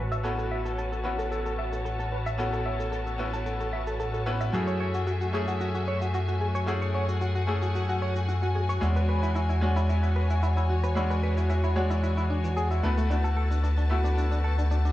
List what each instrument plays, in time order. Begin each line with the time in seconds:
Already playing: analog synth bass A1, string section F#4 B4 C#5 A5
0.12 clean electric guitar E5, cabasa
0.23 grand piano B3 C#4 E4 F#4, clean electric guitar A4, cabasa
0.38 clean electric guitar A4, cabasa
0.51 clean electric guitar E5
0.65 clean electric guitar A4, cabasa
0.78 clean electric guitar A4, cabasa
0.92 clean electric guitar A4, cabasa
1.04 grand piano B3 C#4 E4 F#4, clean electric guitar B4
1.19 clean electric guitar A4, cabasa
1.31 clean electric guitar A4, cabasa
1.46 clean electric guitar A4, cabasa
1.58 clean electric guitar E5
1.72 clean electric guitar A4, cabasa
1.85 clean electric guitar A4, cabasa
1.99 clean electric guitar A4, cabasa
2.12 clean electric guitar B4
2.26 clean electric guitar E5, cabasa
2.38 grand piano B3 C#4 E4 F#4, clean electric guitar A4, cabasa
2.53 clean electric guitar A4, cabasa
2.66 clean electric guitar E5
2.79 clean electric guitar A4, cabasa
2.92 clean electric guitar A4, cabasa
3.07 clean electric guitar A4, cabasa
3.18 grand piano B3 C#4 E4 F#4, clean electric guitar B4
3.34 clean electric guitar A4, cabasa
3.46 clean electric guitar A4, cabasa
3.60 clean electric guitar A4, cabasa
3.73 clean electric guitar E5
3.87 clean electric guitar A4, cabasa
4.00 clean electric guitar A4, cabasa
4.14 clean electric guitar A4, cabasa
4.26 grand piano B3 C#4 E4 B4, clean electric guitar B4
4.41 clean electric guitar E5, cabasa
4.52 analog synth bass F#2, grand piano A3 C#4 E4 G#4, string section A3 F#4 E5 G#5, clean electric guitar F#4, cabasa
4.67 clean electric guitar C#5, cabasa
4.80 clean electric guitar C#5
4.94 clean electric guitar F#4, cabasa
5.07 clean electric guitar F#4, cabasa
5.21 clean electric guitar F#4, cabasa
5.33 grand piano A3 C#4 E4 G#4, clean electric guitar G#4
5.48 clean electric guitar F#4, cabasa
5.61 clean electric guitar F#4, cabasa
5.75 clean electric guitar F#4, cabasa
5.88 clean electric guitar C#5
6.02 clean electric guitar F#4, cabasa
6.14 clean electric guitar F#4, cabasa
6.28 clean electric guitar F#4, cabasa
6.41 clean electric guitar G#4
6.55 clean electric guitar C#5, cabasa
6.66 grand piano A3 C#4 E4 G#4, clean electric guitar F#4, string section F#5, cabasa
6.82 clean electric guitar C#5, cabasa
6.94 clean electric guitar C#5
7.09 clean electric guitar F#4, cabasa
7.21 clean electric guitar F#4, cabasa
7.35 clean electric guitar F#4, cabasa
7.47 grand piano A3 C#4 E4 G#4, clean electric guitar G#4
7.62 clean electric guitar F#4, cabasa
7.75 clean electric guitar F#4, cabasa
7.89 clean electric guitar F#4, cabasa
8.02 clean electric guitar C#5
8.16 clean electric guitar F#4, cabasa
8.29 clean electric guitar F#4, cabasa
8.43 clean electric guitar F#4, cabasa
8.55 clean electric guitar G#4
8.69 clean electric guitar C#5, cabasa
8.81 analog synth bass E2, grand piano G#3 C#4 D4 F#4, clean electric guitar E4, string section C#5, cabasa
8.96 clean electric guitar B4, cabasa
9.09 clean electric guitar B4
9.23 clean electric guitar E4, cabasa
9.35 clean electric guitar E4, cabasa
9.49 clean electric guitar E4, cabasa
9.61 grand piano G#3 C#4 D4 F#4, clean electric guitar F#4
9.76 clean electric guitar E4, cabasa
9.89 clean electric guitar E4, cabasa
10.03 clean electric guitar E4, cabasa
10.16 clean electric guitar B4
10.30 clean electric guitar E4, cabasa
10.43 clean electric guitar E4, cabasa
10.57 clean electric guitar E4, cabasa
10.69 clean electric guitar F#4
10.83 clean electric guitar B4, cabasa
10.95 grand piano G#3 C#4 D4 F#4, clean electric guitar E4, cabasa
11.10 clean electric guitar B4, cabasa
11.23 clean electric guitar B4
11.37 clean electric guitar E4, cabasa
11.50 clean electric guitar E4, cabasa
11.64 clean electric guitar E4, cabasa
11.76 grand piano G#3 D4 F#4 C#5, clean electric guitar F#4
11.90 clean electric guitar E4, cabasa
12.03 clean electric guitar E4, cabasa
12.17 clean electric guitar E4, cabasa
12.30 clean electric guitar D4
12.44 clean electric guitar E3, cabasa
12.57 clean electric guitar G#4, cabasa
12.71 clean electric guitar E4, cabasa
12.83 analog synth bass D2, grand piano A3 B3 E4 B4, clean electric guitar D4, string section B4 A5
12.98 clean electric guitar A3, cabasa
13.09 grand piano A3 B3 E4 F#4, clean electric guitar D4, cabasa
13.24 clean electric guitar A4, cabasa
13.37 clean electric guitar A4
13.51 clean electric guitar D4, cabasa
13.64 clean electric guitar D4, cabasa
13.78 clean electric guitar D4, cabasa
13.90 grand piano A3 B3 E4 F#4, clean electric guitar E4
14.04 clean electric guitar D4, cabasa
14.17 clean electric guitar D4, cabasa
14.31 clean electric guitar D4, cabasa
14.44 clean electric guitar A4
14.58 clean electric guitar D4, cabasa
14.71 clean electric guitar D4, cabasa
14.85 clean electric guitar D4, cabasa